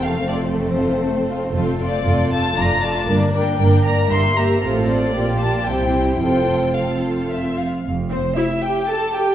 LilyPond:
<<
  \new Staff \with { instrumentName = "Violin section" } { \time 3/4 \key f \major \tempo 4 = 116 f''8 d''8 c''2 | r8 d''4 a''8 bes''8 a''8 | r8 g''4 bes''8 c'''8 bes''8 | r8 d''4 a''8 g''4 |
g''4 f''4 r4 | r8 c''8 e''8 g''8 a''8 g''8 | }
  \new Staff \with { instrumentName = "Violin section" } { \time 3/4 \key f \major << { a'2. | a'8 a'8 a'8 a'8 d''8 d''8 | d''8 d''8 d''8 d''8 e''8 e''8 | c''4 d''4 c''4 |
c''4 a'4 e''8 f''8 | r8 c''8 e''8 g''8 a''8 g''8 | } \\ { a16 c'16 f'16 c'16 a16 c'16 f'16 c'16 a16 c'16 f'16 c'16 | f'8 f'8 f'8 f'8 f'8 f'8 | bes'8 bes'8 bes'8 bes'8 bes'8 bes'8 | a'4 g'4 g'4 |
a'4 r2 | r2. | } >> }
  \new Staff \with { instrumentName = "Viola section" } { \time 3/4 \key f \major <a c'>2. | <a c'>8 <a c'>8 <a c'>8 <a c'>8 <a d'>8 <a d'>8 | <bes d'>8 <bes d'>8 <bes d'>8 <bes d'>8 <bes g'>8 <bes g'>8 | <c' f'>4 <bes f'>4 <c' e'>4 |
<c' f'>4 <c' f'>4. r8 | r8 c'8 e'8 g'8 a'8 g'8 | }
  \new Staff \with { instrumentName = "Cello section" } { \clef bass \time 3/4 \key f \major f,2. | f,4 f,4 f,4 | g,4 g,4 g,4 | a,4 bes,4 c4 |
f,2~ f,8 r8 | f,4 r2 | }
  \new Staff \with { instrumentName = "Double bass section" } { \clef bass \time 3/4 \key f \major f,,2. | f,,4 f,,4 f,,4 | g,,4 g,,4 g,,4 | a,,4 bes,,4 c,4 |
f,,2~ f,,8 r8 | f,,4 r2 | }
>>